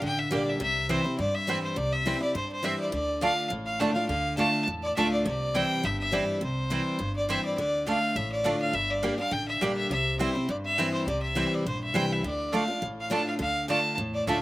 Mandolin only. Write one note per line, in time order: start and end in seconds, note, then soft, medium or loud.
0.32 0.41 A#3 medium
0.32 0.42 G4 loud
0.32 0.42 D5 medium
0.32 0.42 G5 loud
0.89 0.99 C4 medium
0.89 0.99 E4 medium
0.89 1.00 C5 medium
0.89 1.00 G5 medium
1.48 1.58 C4 medium
1.48 1.58 E4 medium
1.48 1.58 C5 loud
1.48 1.58 G5 loud
2.06 2.16 C4 medium
2.06 2.16 E4 medium
2.06 2.16 C5 medium
2.06 2.16 G5 medium
2.64 2.74 C4 medium
2.64 2.74 E4 loud
2.64 2.74 C5 medium
2.64 2.75 G5 medium
3.22 3.32 A3 medium
3.22 3.32 F4 medium
3.22 3.32 D5 medium
3.22 3.32 A5 medium
3.80 3.90 A3 loud
3.80 3.90 F4 loud
3.80 3.90 D5 loud
3.80 3.91 A5 loud
4.39 4.48 A3 medium
4.39 4.48 F4 medium
4.39 4.49 D5 medium
4.39 4.49 A5 medium
4.96 5.06 A3 medium
4.96 5.06 F4 loud
4.96 5.07 D5 loud
4.96 5.07 A5 loud
5.54 5.64 C4 medium
5.54 5.65 E4 medium
5.54 5.65 C5 medium
5.54 5.65 G5 medium
6.13 6.22 C4 medium
6.13 6.23 E4 loud
6.13 6.23 C5 loud
6.13 6.23 G5 loud
6.71 6.81 C4 medium
6.71 6.81 E4 medium
6.71 6.81 C5 medium
6.71 6.81 G5 medium
7.29 7.39 C4 medium
7.29 7.39 E4 medium
7.29 7.39 C5 loud
7.29 7.39 G5 loud
7.87 7.97 A3 medium
7.87 7.97 F4 medium
7.87 7.97 D5 medium
7.87 7.97 A5 loud
8.44 8.55 A3 medium
8.44 8.55 F4 medium
8.44 8.55 D5 loud
8.44 8.55 A5 medium
9.03 9.13 A#3 medium
9.03 9.13 G4 medium
9.03 9.13 D5 medium
9.03 9.14 G5 medium
9.61 9.71 A#3 medium
9.61 9.71 G4 medium
9.61 9.71 D5 loud
9.61 9.72 G5 medium
10.19 10.29 C4 medium
10.19 10.29 E4 medium
10.19 10.30 C5 medium
10.19 10.30 G5 medium
10.78 10.87 C4 medium
10.78 10.88 E4 medium
10.78 10.88 C5 loud
10.78 10.88 G5 medium
11.36 11.46 C4 medium
11.36 11.46 E4 medium
11.36 11.46 C5 medium
11.36 11.46 G5 medium
11.94 12.04 C4 medium
11.94 12.04 E4 loud
11.94 12.04 C5 loud
11.94 12.05 G5 loud
12.52 12.62 A3 medium
12.52 12.62 F4 medium
12.52 12.63 D5 medium
12.52 12.63 A5 medium
13.11 13.21 A3 medium
13.11 13.21 F4 loud
13.11 13.21 D5 loud
13.11 13.21 A5 loud
13.69 13.79 A3 medium
13.69 13.79 F4 medium
13.69 13.79 D5 medium
13.69 13.79 A5 medium
14.27 14.37 A3 medium
14.27 14.37 F4 loud
14.27 14.37 D5 medium
14.27 14.38 A5 loud